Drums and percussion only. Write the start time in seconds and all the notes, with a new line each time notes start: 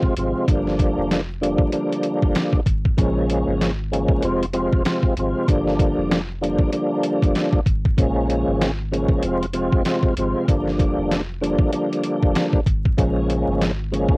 0.03 kick
0.17 closed hi-hat
0.48 kick, closed hi-hat
0.67 snare
0.79 kick, closed hi-hat
1.11 snare, closed hi-hat
1.43 closed hi-hat
1.58 kick
1.72 closed hi-hat
1.93 closed hi-hat
2.03 closed hi-hat
2.22 kick
2.35 snare, closed hi-hat
2.53 kick
2.66 kick, closed hi-hat
2.85 kick
2.98 kick, closed hi-hat
3.30 closed hi-hat
3.61 snare, closed hi-hat
3.93 closed hi-hat
4.08 kick
4.22 closed hi-hat
4.43 closed hi-hat
4.53 closed hi-hat
4.72 kick
4.85 snare, closed hi-hat
5.03 kick
5.17 closed hi-hat
5.48 kick, closed hi-hat
5.67 snare
5.79 kick, closed hi-hat
6.11 snare, closed hi-hat
6.44 closed hi-hat
6.58 kick
6.73 closed hi-hat
7.03 closed hi-hat
7.22 kick, closed hi-hat
7.35 snare, closed hi-hat
7.53 kick
7.66 kick, closed hi-hat
7.85 kick
7.98 kick, closed hi-hat
8.30 closed hi-hat
8.61 snare, closed hi-hat
8.93 closed hi-hat
9.08 kick
9.23 closed hi-hat
9.43 closed hi-hat
9.53 closed hi-hat
9.72 kick
9.85 snare, closed hi-hat
10.03 kick
10.17 closed hi-hat
10.48 kick, closed hi-hat
10.68 snare
10.79 kick, closed hi-hat
11.11 snare, closed hi-hat
11.44 closed hi-hat
11.59 kick
11.73 closed hi-hat
11.93 closed hi-hat
12.04 closed hi-hat
12.23 kick
12.35 snare, closed hi-hat
12.53 kick
12.66 kick, closed hi-hat
12.85 kick
12.98 kick, closed hi-hat
13.30 closed hi-hat
13.61 snare, closed hi-hat
13.94 closed hi-hat
14.08 kick